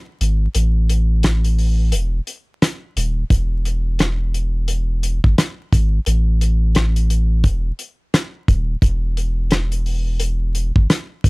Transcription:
0.21 sub bass G#1, closed hi-hat
0.55 sub bass A1, closed hi-hat
0.90 closed hi-hat
1.23 cross-stick, snare, closed hi-hat
1.44 closed hi-hat
1.58 open hi-hat
1.92 sub bass E1, closed hi-hat
2.27 closed hi-hat
2.62 cross-stick, snare, closed hi-hat
2.96 sub bass D#1, closed hi-hat
3.30 sub bass E1, kick, closed hi-hat
3.65 closed hi-hat
3.99 cross-stick, snare, closed hi-hat
4.34 closed hi-hat
4.68 closed hi-hat
5.03 closed hi-hat
5.24 sub bass G1, kick
5.38 cross-stick, snare, closed hi-hat
5.73 sub bass G#1, kick, closed hi-hat
6.06 sub bass A1, closed hi-hat
6.41 closed hi-hat
6.75 cross-stick, snare, closed hi-hat
6.96 closed hi-hat
7.10 closed hi-hat
7.44 sub bass E1, kick, closed hi-hat
7.79 closed hi-hat
8.14 cross-stick, snare, closed hi-hat
8.48 sub bass D#1, kick, closed hi-hat
8.82 sub bass E1, kick, closed hi-hat
9.17 closed hi-hat
9.51 cross-stick, snare, closed hi-hat
9.72 closed hi-hat
9.86 open hi-hat
10.20 closed hi-hat
10.55 closed hi-hat
10.76 sub bass G1, kick
10.90 cross-stick, snare, closed hi-hat
11.24 sub bass G#1, kick, closed hi-hat

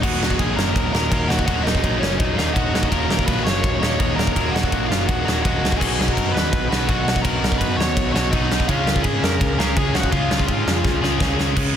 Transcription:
0.02 picked electric bass D#1, overdriven electric guitar D#2 A#2 D#3 F#3 A#3 D#4, lead electric guitar F#4 F#5, kick, crash
0.21 picked electric bass D#1, snare
0.30 kick
0.39 picked electric bass A#1, lead electric guitar G#4 G#5, kick, ride
0.56 picked electric bass F#1, lead electric guitar A#4 A#5, snare
0.76 picked electric bass D#1, kick, ride
0.93 picked electric bass D#1, overdriven electric guitar D#2 A#2 D#3 F#3 A#3 D#4, lead electric guitar A#4 A#5, snare
1.10 picked electric bass D#1, overdriven electric guitar D#2 A#2 D#3 F#3 A#3 D#4, kick, ride
1.28 picked electric bass D#1, lead electric guitar F#4 F#5, snare
1.39 kick
1.46 picked electric bass D#1, overdriven electric guitar D#2 A#2 D#3 F#3 A#3 D#4, lead electric guitar F#4 F#5, kick, ride
1.63 picked electric bass D#1, lead electric guitar D#4 D#5, snare
1.75 kick
1.84 picked electric bass A#1, kick, ride
2.00 picked electric bass F#1, lead electric guitar C#4 C#5, snare
2.19 picked electric bass D#1, lead electric guitar D#4 D#5, kick, ride
2.37 picked electric bass D#1, overdriven electric guitar D#2 A#2 D#3 F#3 A#3 D#4, snare
2.54 picked electric bass D#1, overdriven electric guitar D#2 A#2 D#3 F#3 A#3 D#4, lead electric guitar F#4 F#5, kick, ride
2.74 picked electric bass D#1, snare
2.83 kick
2.89 picked electric bass D#1, overdriven electric guitar D#2 A#2 D#3, lead electric guitar A#4 A#5, kick, ride
2.93 overdriven electric guitar F#3 A#3 D#4
3.09 picked electric bass D#1, snare
3.19 kick
3.26 picked electric bass A#1, lead electric guitar B4 B5, kick, ride
3.44 picked electric bass F#1, lead electric guitar C#5 C#6, snare
3.64 picked electric bass D#1, kick, ride
3.79 picked electric bass D#1, overdriven electric guitar D#3 F#3 A#3 D#4, lead electric guitar C#5 C#6, snare
3.83 overdriven electric guitar D#2 A#2
3.99 picked electric bass D#1, overdriven electric guitar D#2 A#2 D#3 F#3 A#3 D#4, kick, ride
4.16 picked electric bass D#1, lead electric guitar A#4 A#5, snare
4.27 kick
4.33 picked electric bass D#1, overdriven electric guitar D#2 A#2 D#3 F#3, lead electric guitar A#4 A#5, kick, ride
4.37 overdriven electric guitar A#3 D#4
4.51 picked electric bass D#1, lead electric guitar F#4 F#5
4.56 snare
4.63 kick
4.72 picked electric bass A#1, kick, ride
4.88 picked electric bass F#1, lead electric guitar F4 F5, snare
5.07 picked electric bass D#1, lead electric guitar F#4 F#5, kick, ride
5.25 picked electric bass D#1, overdriven electric guitar D#2 A#2 D#3 F#3 A#3 D#4, snare
5.42 picked electric bass D#1, overdriven electric guitar D#2 A#2 D#3 F#3 A#3 D#4, lead electric guitar F#4 F#5, kick, ride
5.62 picked electric bass C#2, snare
5.72 kick
5.77 overdriven electric guitar B2 F#3 B3, lead electric guitar G#4 G#5
5.81 picked electric bass B1, overdriven electric guitar D#4 F#4, kick, crash
5.99 picked electric bass B1, snare
6.08 kick
6.13 picked electric bass F#2, lead electric guitar A#4 A#5, kick
6.18 ride
6.31 picked electric bass D#2, lead electric guitar B4 B5
6.37 snare
6.53 picked electric bass B1, kick, ride
6.69 picked electric bass B1, overdriven electric guitar B2 F#3 B3 D#4 F#4, lead electric guitar B4 B5, snare
6.86 picked electric bass B1, overdriven electric guitar B2 F#3 B3 D#4, lead electric guitar F#4 F#5, kick, ride
6.90 overdriven electric guitar F#4
7.06 picked electric bass B1, snare
7.16 kick
7.22 picked electric bass B1, overdriven electric guitar B2 F#3 B3 D#4, lead electric guitar A#4 A#5, kick, ride
7.26 overdriven electric guitar F#4
7.43 picked electric bass B1, snare
7.52 kick
7.58 picked electric bass F#2, lead electric guitar B4 B5, kick, ride
7.77 picked electric bass D#2, lead electric guitar C#5 C#6, snare
7.97 picked electric bass B1, kick, ride
8.12 picked electric bass B1, overdriven electric guitar F#3 B3 D#4 F#4, lead electric guitar C#5 C#6, snare
8.17 overdriven electric guitar B2
8.31 picked electric bass B1, overdriven electric guitar B2 F#3 B3 D#4, lead electric guitar D#4 D#5, kick, ride
8.35 overdriven electric guitar F#4
8.50 picked electric bass B1, snare
8.60 kick
8.68 picked electric bass C#2, overdriven electric guitar C#3 G#3 C#4 F4 G#4, lead electric guitar F4 F5, kick, ride
8.86 picked electric bass C#2, snare
8.96 kick
9.03 picked electric bass G#2, lead electric guitar G#4 G#5, kick, ride
9.22 picked electric bass F2, lead electric guitar A#4 A#5, snare
9.41 picked electric bass C#2, kick, ride
9.58 picked electric bass C#2, overdriven electric guitar C#3 G#3 C#4 F4 G#4, lead electric guitar A#4 A#5, snare
9.76 picked electric bass C#2, overdriven electric guitar C#3 G#3 C#4 F4 G#4, lead electric guitar G#4 G#5, kick, ride
9.94 picked electric bass C#2, lead electric guitar F#4 F#5, snare
10.03 kick
10.11 picked electric bass C#2, overdriven electric guitar C#3 G#3 C#4 F4 G#4, lead electric guitar F4 F5, kick, ride
10.30 picked electric bass C#2, snare
10.39 kick
10.48 picked electric bass G#2, kick, ride
10.66 picked electric bass F2, snare
10.84 picked electric bass C#2, kick, snare
11.01 picked electric bass C#2, overdriven electric guitar C#3 G#3 C#4 F4 G#4, snare
11.20 picked electric bass C#2, overdriven electric guitar C#3 G#3 C#4 F4 G#4, kick, snare
11.39 picked electric bass C#2, snare
11.56 picked electric bass C#2, overdriven electric guitar C#3 G#3 C#4, kick, crash

